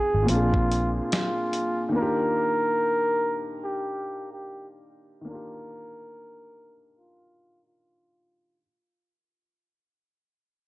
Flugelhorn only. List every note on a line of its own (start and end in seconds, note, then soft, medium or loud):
0.00 0.25 G#4 medium
0.30 0.94 F4 medium
0.99 1.92 F4 medium
1.97 3.58 A#4 loud
3.64 4.28 G4 medium
4.33 4.69 G4 medium
5.30 6.92 A#4 loud
6.98 7.61 F4 medium
7.67 8.59 F4 medium